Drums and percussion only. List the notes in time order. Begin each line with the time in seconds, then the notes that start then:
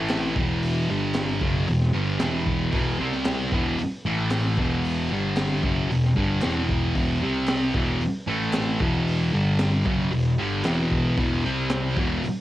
0.10 snare, clap, open hi-hat
0.36 kick
0.63 open hi-hat
1.15 snare, clap, open hi-hat
1.41 kick
1.67 open hi-hat
1.81 snare
2.20 snare, clap, open hi-hat
2.46 kick
2.72 kick, open hi-hat
3.12 snare
3.25 snare, clap, open hi-hat
3.52 kick
3.78 open hi-hat
4.31 snare, clap, open hi-hat
4.57 kick
4.84 open hi-hat
5.37 snare, clap, open hi-hat
5.63 kick
5.91 open hi-hat
6.04 snare
6.16 kick
6.42 snare, clap, open hi-hat
6.69 kick
6.95 kick, open hi-hat
7.48 snare, clap, open hi-hat
7.75 kick
8.01 open hi-hat
8.53 snare, clap, open hi-hat
8.80 kick
9.08 open hi-hat
9.59 snare, clap, open hi-hat
9.86 kick
10.12 open hi-hat
10.65 snare, clap, open hi-hat
10.91 kick
11.17 kick, open hi-hat
11.70 snare, clap
11.97 kick
12.24 open hi-hat